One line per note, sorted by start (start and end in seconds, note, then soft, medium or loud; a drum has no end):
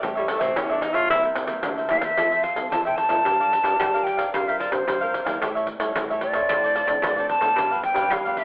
0.01 0.38 A1 loud
0.01 0.54 A2 medium
0.01 0.11 G3 medium
0.01 0.11 C#4 medium
0.01 0.12 E4 medium
0.01 0.15 G4 medium
0.01 0.15 A4 medium
0.01 0.15 C#5 medium
0.01 0.14 E5 medium
0.01 pandeiro medium
0.15 0.26 G3 medium
0.15 0.31 G3 medium
0.15 0.26 C#4 medium
0.15 0.27 E4 medium
0.15 0.26 A4 medium
0.15 0.27 C#5 medium
0.15 0.27 E5 medium
0.15 pandeiro soft
0.28 0.65 G3 medium
0.28 0.43 A3 medium
0.28 0.66 C#4 medium
0.28 0.66 E4 medium
0.28 muted cavaquinho stroke soft
0.28 pandeiro medium
0.39 0.54 A1 loud
0.39 0.59 C4 medium
0.39 0.54 A4 medium
0.39 0.55 C#5 medium
0.39 0.54 E5 medium
0.39 pandeiro medium
0.55 0.97 E2 loud
0.55 1.08 E3 medium
0.55 0.73 C#4 medium
0.55 0.68 G4 medium
0.55 0.69 A4 soft
0.55 0.69 C#5 medium
0.55 0.68 E5 medium
0.55 pandeiro medium
0.70 1.07 G3 medium
0.70 1.07 C#4 medium
0.70 0.84 D4 medium
0.70 1.07 E4 medium
0.70 0.80 A4 medium
0.70 0.80 C#5 medium
0.70 0.81 E5 medium
0.70 pandeiro soft
0.81 0.96 D#4 loud
0.81 muted cavaquinho stroke soft
0.81 pandeiro medium
0.93 1.08 A#1 medium
0.93 1.10 F4 loud
0.93 1.08 A4 medium
0.93 1.08 C#5 medium
0.93 1.08 E5 medium
0.93 pandeiro medium
1.09 1.33 C2 medium
1.09 1.61 C3 medium
1.09 1.36 G3 medium
1.09 1.36 A#3 medium
1.09 1.22 E4 soft
1.09 1.36 E4 medium
1.09 1.27 E4 loud
1.09 1.23 A#4 soft
1.09 1.23 C5 soft
1.09 1.22 E5 medium
1.09 pandeiro medium
1.23 1.48 A#4 medium
1.23 1.47 C5 medium
1.23 1.46 E5 medium
1.23 pandeiro soft
1.35 1.61 C2 medium
1.35 pandeiro medium
1.47 1.59 G3 medium
1.47 1.59 A#3 medium
1.47 1.59 E4 medium
1.47 1.76 A#4 medium
1.47 1.75 C5 medium
1.47 1.75 E5 medium
1.47 pandeiro medium
1.63 1.89 D2 medium
1.63 2.15 G2 medium
1.63 1.87 G3 medium
1.63 1.87 A#3 medium
1.63 1.87 E4 medium
1.63 pandeiro medium
1.77 1.89 A#4 medium
1.77 1.89 C5 medium
1.77 1.90 E5 medium
1.77 pandeiro soft
1.89 2.15 E2 medium
1.89 2.08 G3 medium
1.89 2.08 A#3 medium
1.89 2.03 E4 soft
1.89 2.08 E4 medium
1.89 2.02 A#4 soft
1.89 2.02 C5 medium
1.89 1.99 E5 loud
1.89 2.01 E5 medium
1.89 pandeiro medium
1.98 2.06 F5 medium
1.98 pandeiro medium
2.02 2.17 A#4 medium
2.02 2.16 C5 medium
2.02 2.16 E5 medium
2.02 2.44 E5 loud
2.17 2.52 F2 loud
2.17 2.69 F3 medium
2.17 2.43 C4 medium
2.17 2.43 E4 medium
2.17 2.30 F4 soft
2.17 2.31 A4 soft
2.17 2.44 A4 medium
2.17 2.31 C5 medium
2.17 2.31 E5 medium
2.17 pandeiro medium
2.32 2.42 A4 medium
2.32 2.42 C5 medium
2.32 2.43 E5 medium
2.32 pandeiro soft
2.42 2.54 F4 medium
2.42 2.54 A4 medium
2.42 2.55 C5 medium
2.42 2.55 E5 medium
2.42 2.70 F5 medium
2.42 pandeiro medium
2.55 2.69 C2 medium
2.55 2.80 C4 medium
2.55 2.80 E4 medium
2.55 2.80 A4 medium
2.55 muted cavaquinho stroke soft
2.55 pandeiro medium
2.70 3.07 F2 medium
2.70 3.23 C3 medium
2.70 2.84 F4 soft
2.70 2.84 A4 soft
2.70 2.85 C5 soft
2.70 2.84 E5 soft
2.70 2.84 A5 medium
2.70 pandeiro medium
2.85 3.09 C4 medium
2.85 3.09 E4 medium
2.85 3.09 A4 medium
2.85 3.10 A4 medium
2.85 3.09 C5 medium
2.85 3.08 E5 medium
2.85 2.98 G5 medium
2.85 pandeiro soft
2.96 4.05 A5 loud
2.96 pandeiro medium
3.09 3.23 F2 medium
3.09 3.61 D4 medium
3.09 3.61 F4 medium
3.09 3.24 A4 soft
3.09 3.61 A#4 medium
3.09 3.24 C5 medium
3.09 3.23 E5 medium
3.09 pandeiro medium
3.25 3.60 G2 loud
3.25 3.78 G3 medium
3.25 3.38 G4 soft
3.25 3.38 A#4 soft
3.25 3.39 D5 medium
3.25 3.39 F5 soft
3.25 pandeiro medium
3.40 3.51 A#4 soft
3.40 3.51 D5 medium
3.40 3.51 F5 medium
3.40 pandeiro soft
3.51 muted cavaquinho stroke soft
3.51 pandeiro medium
3.64 3.76 G2 medium
3.64 3.88 D4 medium
3.64 3.89 F4 medium
3.64 3.92 A#4 soft
3.64 3.89 A#4 medium
3.64 3.91 D5 medium
3.64 3.91 F5 medium
3.64 pandeiro medium
3.80 4.31 D3 medium
3.80 4.26 G3 medium
3.80 pandeiro medium
3.94 4.30 D4 medium
3.94 4.31 F4 medium
3.94 4.05 A#4 soft
3.94 4.31 A#4 medium
3.94 4.06 D5 medium
3.94 4.06 F5 medium
3.94 pandeiro soft
4.04 4.19 G4 soft
4.04 4.18 A#4 soft
4.04 4.17 D5 soft
4.04 4.16 F5 soft
4.04 4.32 G5 medium
4.04 pandeiro medium
4.17 4.32 A#4 medium
4.17 4.32 D5 medium
4.17 4.31 F5 medium
4.17 pandeiro medium
4.33 4.68 G2 loud
4.33 4.86 G3 medium
4.33 4.70 C4 medium
4.33 4.46 F4 soft
4.33 4.70 F4 medium
4.33 4.47 A#4 soft
4.33 4.71 A#4 medium
4.33 4.47 C5 medium
4.33 4.49 F5 medium
4.33 4.47 F5 medium
4.33 pandeiro medium
4.48 4.58 A#4 medium
4.48 4.59 C5 medium
4.48 4.59 E5 medium
4.48 4.59 F5 medium
4.48 pandeiro soft
4.59 4.70 F4 medium
4.59 4.70 A#4 medium
4.59 4.71 C5 medium
4.59 4.74 D5 medium
4.59 4.71 F5 medium
4.59 pandeiro medium
4.71 4.85 G2 loud
4.71 4.96 C4 medium
4.71 4.96 F4 medium
4.71 4.96 A#4 medium
4.71 5.28 C5 medium
4.71 muted cavaquinho stroke soft
4.71 pandeiro medium
4.87 5.22 G2 loud
4.87 5.25 G3 medium
4.87 5.00 F4 soft
4.87 5.00 A#4 medium
4.87 5.00 C5 soft
4.87 5.00 F5 medium
4.87 pandeiro medium
5.01 5.25 C4 medium
5.01 5.25 F4 medium
5.01 5.25 A#4 medium
5.01 5.24 C5 medium
5.01 5.23 F5 medium
5.01 pandeiro soft
5.14 pandeiro medium
5.25 5.39 E2 medium
5.25 5.77 G3 medium
5.25 5.77 C#4 medium
5.25 5.77 E4 medium
5.25 5.40 A#4 medium
5.25 5.39 C5 medium
5.25 5.39 F5 medium
5.25 pandeiro medium
5.41 5.76 A2 loud
5.41 5.93 A2 medium
5.41 5.54 G4 soft
5.41 5.54 A4 soft
5.41 5.54 C#5 soft
5.41 5.54 E5 medium
5.41 pandeiro medium
5.55 5.67 A4 soft
5.55 5.67 C#5 medium
5.55 5.68 E5 medium
5.55 pandeiro soft
5.67 muted cavaquinho stroke soft
5.67 pandeiro medium
5.80 5.92 A2 medium
5.80 6.04 G3 medium
5.80 6.04 C#4 medium
5.80 6.04 E4 medium
5.80 6.08 A4 soft
5.80 6.07 C#5 medium
5.80 6.07 E5 medium
5.80 pandeiro medium
5.95 6.41 A2 medium
5.95 6.47 E3 medium
5.95 pandeiro medium
6.09 6.32 G3 medium
6.09 6.32 C#4 medium
6.09 6.32 E4 medium
6.09 6.21 A4 medium
6.09 6.22 C#5 medium
6.09 6.22 E5 medium
6.09 pandeiro soft
6.21 6.34 G4 soft
6.21 6.34 A4 medium
6.21 6.34 C#5 soft
6.21 7.27 D5 loud
6.21 6.33 E5 soft
6.21 pandeiro medium
6.33 6.84 F3 medium
6.33 6.85 C4 medium
6.33 6.85 D4 medium
6.33 6.48 A4 medium
6.33 6.48 C#5 medium
6.33 6.47 E5 medium
6.33 pandeiro medium
6.49 6.84 A2 loud
6.49 7.01 A2 medium
6.49 6.62 F4 soft
6.49 6.62 A4 medium
6.49 6.63 C5 medium
6.49 6.63 D5 medium
6.49 pandeiro medium
6.64 6.74 A4 medium
6.64 6.75 C5 medium
6.64 6.76 D5 medium
6.64 pandeiro soft
6.75 6.86 F4 medium
6.75 6.86 A4 medium
6.75 6.87 C5 medium
6.75 6.87 D5 medium
6.75 pandeiro medium
6.87 7.00 A2 loud
6.87 7.12 F3 medium
6.87 7.12 C4 medium
6.87 7.12 D4 medium
6.87 muted cavaquinho stroke soft
6.87 pandeiro medium
7.02 7.37 A2 loud
7.02 7.55 A2 medium
7.02 7.16 F4 soft
7.02 7.16 A4 soft
7.02 7.16 C5 soft
7.02 7.16 D5 soft
7.02 pandeiro medium
7.17 7.40 F3 medium
7.17 7.40 C4 medium
7.17 7.40 D4 medium
7.17 7.42 A4 medium
7.17 7.41 C5 medium
7.17 7.40 D5 medium
7.17 pandeiro soft
7.29 7.80 A5 loud
7.29 pandeiro medium
7.41 7.54 A2 medium
7.41 7.92 F3 medium
7.41 7.93 B3 medium
7.41 7.93 D4 medium
7.41 7.56 A4 medium
7.41 7.55 C5 medium
7.41 7.55 D5 medium
7.41 pandeiro medium
7.56 7.91 G2 loud
7.56 8.09 G2 medium
7.56 7.69 D4 soft
7.56 7.70 G4 soft
7.56 7.70 B4 soft
7.56 7.70 F5 medium
7.56 pandeiro medium
7.71 7.82 G4 soft
7.71 7.82 B4 medium
7.71 7.82 F5 medium
7.71 pandeiro soft
7.82 8.14 G5 medium
7.82 muted cavaquinho stroke soft
7.82 pandeiro medium
7.94 8.07 G2 medium
7.94 8.19 F3 medium
7.94 8.19 B3 medium
7.94 8.19 D4 medium
7.94 8.23 G4 medium
7.94 8.22 B4 medium
7.94 8.22 F5 medium
7.94 pandeiro medium
8.10 8.44 D3 medium
8.10 8.44 G3 medium
8.10 8.32 F5 medium
8.10 pandeiro medium
8.25 8.44 F3 medium
8.25 8.44 B3 medium
8.25 8.44 D4 medium
8.25 8.36 G4 medium
8.25 8.37 B4 medium
8.25 8.37 F5 medium
8.25 pandeiro soft
8.32 8.40 F5 medium
8.37 8.44 D4 soft
8.37 8.44 G4 soft
8.37 8.44 B4 soft
8.37 8.44 E5 loud
8.37 8.44 F5 soft
8.37 pandeiro medium